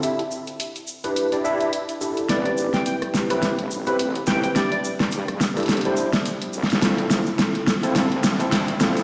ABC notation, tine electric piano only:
X:1
M:4/4
L:1/16
Q:"Swing 16ths" 1/4=106
K:Am
V:1 name="Tine electric piano"
[DEGe] z6 [DEGB]2 [DEGd] [DEGe]2 z2 [DEGA]2 | [CEGB]6- [CEGB] [CEGB]2 z2 [CEGB] z2 [CEGB]2 | [DEGd] z6 [DEGA]2 [DEGc]2 z4 z | [CEFA]6- [CEFA] [CEFA]2 z2 [CEFA] z2 [CEFA]2 |]